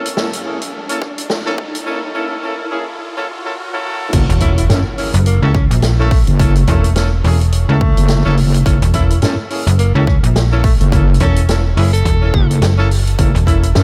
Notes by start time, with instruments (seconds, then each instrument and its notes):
Already playing: riser
0.06 closed hi-hat
0.16 horn section A#3 C#4 E4 A4, snare
0.33 closed hi-hat
0.45 horn section A#3 C#4 E4 G#4
0.62 closed hi-hat
0.89 horn section A#3 C#4 E4 A4, closed hi-hat
1.02 kick, cross-stick
1.18 closed hi-hat
1.30 snare
1.46 horn section A#3 C#4 E4 A4, cross-stick
1.58 kick
1.75 closed hi-hat
1.86 horn section A#3 C#4 E4 A4
2.15 horn section A#3 C#4 E4 A4
2.43 horn section A#3 C#4 E4 A4
2.71 horn section A#3 C#4 E4 G#4
3.00 swell
3.16 horn section A#3 C#4 E4 A4
3.44 horn section A#3 C#4 E4 A4
3.73 horn section A#3 C#4 E4 A4
4.13 wobble bass F#1, horn section A#3 C#4 E4 A4, kick, closed hi-hat, crash, impact
4.29 fm bass E1, closed hi-hat
4.40 horn section A#3 C#4 E4 A4, tenor saxophone E4, kick, cross-stick, closed hi-hat
4.58 tenor saxophone E4, closed hi-hat
4.70 wobble bass F#2, horn section A#3 C#4 E4 A4, snare, closed hi-hat
4.98 horn section A#3 C#4 E4 G#4, open hi-hat
5.14 fm bass F#1, closed hi-hat
5.26 tenor saxophone A#3, closed hi-hat
5.42 fm bass C#2, horn section A#3 C#4 E4 A4, tenor saxophone C#4
5.54 tenor saxophone C#4, kick, cross-stick
5.71 fm bass A#1, closed hi-hat
5.82 snare, closed hi-hat
5.99 tenor saxophone A3, horn section A#3 C#4 E4 A4, cross-stick
6.11 kick, open hi-hat
6.27 wobble bass F#1, closed hi-hat
6.39 horn section A#3 C#4 E4 A4, kick, closed hi-hat
6.55 closed hi-hat
6.67 fm bass E1, tenor saxophone A3, horn section A#3 C#4 E4 A4, kick, cross-stick, closed hi-hat
6.84 closed hi-hat
6.96 horn section A#3 C#4 E4 A4, snare, closed hi-hat
7.24 fm bass E1, horn section A#3 C#4 E4 G#4, open hi-hat
7.41 closed hi-hat
7.52 closed hi-hat
7.69 fm bass C#2, tenor saxophone A3, horn section A#3 C#4 E4 A4
7.81 kick
7.97 wobble bass F#1, closed hi-hat
8.08 snare, closed hi-hat
8.25 wobble bass F#1, horn section A#3 C#4 E4 A4
8.37 open hi-hat
8.54 closed hi-hat
8.65 wobble bass F#1, horn section A#3 C#4 E4 A4, kick, closed hi-hat
8.82 fm bass E1, closed hi-hat
8.94 horn section A#3 C#4 E4 A4, tenor saxophone E4, kick, cross-stick, closed hi-hat
9.10 tenor saxophone E4, closed hi-hat
9.22 wobble bass F#2, horn section A#3 C#4 E4 A4, snare, closed hi-hat
9.50 horn section A#3 C#4 E4 G#4, open hi-hat
9.67 fm bass F#1, closed hi-hat
9.79 tenor saxophone A#3, closed hi-hat
9.95 fm bass C#2, horn section A#3 C#4 E4 A4, tenor saxophone C#4
10.07 tenor saxophone C#4, kick, cross-stick
10.23 fm bass A#1, closed hi-hat
10.36 snare, closed hi-hat
10.52 horn section A#3 C#4 E4 A4, cross-stick
10.64 tenor saxophone A3, kick, open hi-hat
10.80 wobble bass F#1, tenor saxophone A3, closed hi-hat
10.92 horn section A#3 C#4 E4 A4, kick, closed hi-hat
11.14 closed hi-hat
11.20 fm bass E1, horn section A#3 C#4 E4 A4, tenor saxophone C#4, kick, cross-stick, closed hi-hat
11.36 closed hi-hat
11.49 horn section A#3 C#4 E4 A4, snare, closed hi-hat
11.77 fm bass F#1, horn section A#3 C#4 E4 G#4, tenor saxophone E4, open hi-hat
11.93 tenor saxophone A4, closed hi-hat
12.05 fm bass E1, kick, closed hi-hat
12.21 horn section A#3 C#4 E4 A4
12.34 wobble bass F#1, kick
12.51 closed hi-hat
12.62 fm bass F#1, snare, closed hi-hat
12.78 horn section A#3 C#4 E4 A4
12.91 open hi-hat
13.07 closed hi-hat
13.19 wobble bass F#1, horn section A#3 C#4 E4 A4, kick, closed hi-hat
13.35 fm bass E1, closed hi-hat
13.47 horn section A#3 C#4 E4 A4, tenor saxophone E4, kick, cross-stick, closed hi-hat
13.63 tenor saxophone E4, closed hi-hat
13.75 wobble bass F#2, horn section A#3 C#4 E4 A4, snare, closed hi-hat